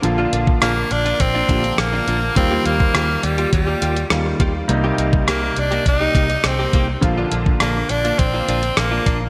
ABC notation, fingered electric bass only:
X:1
M:4/4
L:1/8
Q:1/4=103
K:Bb
V:1 name="Fingered electric bass" clef=bass
B,,, B,,, B,,, B,,, B,,, B,,, B,,, B,,, | E,, E,, E,, E,, E,, E,, E,, E,, | C,, C,, C,, C,, C,, C,, C,, C,, | B,,, B,,, B,,, B,,, B,,, B,,, B,,, B,,, |]